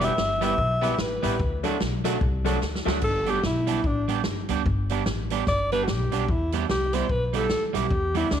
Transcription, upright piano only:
0.00 0.12 B3 medium
0.00 0.13 E4 medium
0.00 0.13 G4 medium
0.00 0.13 B4 medium
0.41 0.53 B3 loud
0.41 0.54 E4 medium
0.41 0.54 G4 loud
0.41 0.54 B4 loud
0.81 0.94 B3 loud
0.81 0.94 E4 medium
0.81 0.94 G4 medium
0.81 0.95 B4 loud
0.99 1.04 G4 soft
0.99 1.04 B4 soft
1.22 1.35 B3 medium
1.22 1.35 E4 medium
1.22 1.35 G4 medium
1.22 1.35 B4 loud
1.63 1.76 A3 medium
1.63 1.76 D4 medium
1.63 1.76 F#4 medium
1.63 1.76 A4 loud
2.04 2.17 A3 loud
2.04 2.17 D4 medium
2.04 2.17 F#4 medium
2.04 2.17 A4 loud
2.44 2.57 A3 medium
2.44 2.57 D4 medium
2.44 2.57 F#4 medium
2.44 2.58 A4 loud
2.61 2.66 F#4 soft
2.61 2.66 A4 soft
2.85 2.98 A3 loud
2.85 2.98 D4 medium
2.85 2.98 F#4 loud
2.85 2.99 A4 loud

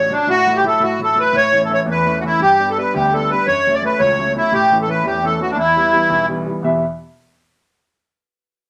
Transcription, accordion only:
0.00 0.13 C#5 medium
0.12 0.29 D4 medium
0.30 0.58 F#4 loud
0.57 0.65 G4 medium
0.67 0.83 A4 medium
0.83 1.00 F#4 medium
1.03 1.19 A4 medium
1.20 1.36 B4 medium
1.37 1.61 C#5 loud
1.65 1.72 A4 medium
1.74 1.80 C#5 medium
1.91 2.19 B4 medium
2.20 2.24 F#4 medium
2.27 2.41 E4 medium
2.42 2.69 G4 loud
2.70 2.78 A4 medium
2.78 2.94 B4 medium
2.94 3.14 G4 medium
3.13 3.30 A4 medium
3.30 3.47 B4 medium
3.47 3.75 C#5 loud
3.75 3.83 D5 medium
3.86 4.01 B4 medium
3.99 4.33 C#5 medium
4.37 4.53 E4 medium
4.53 4.78 G4 medium
4.82 4.89 A4 medium
4.90 5.06 B4 medium
5.06 5.25 G4 medium
5.25 5.40 A4 medium
5.42 5.51 F#4 medium
5.51 5.57 D4 medium
5.58 6.26 E4 medium

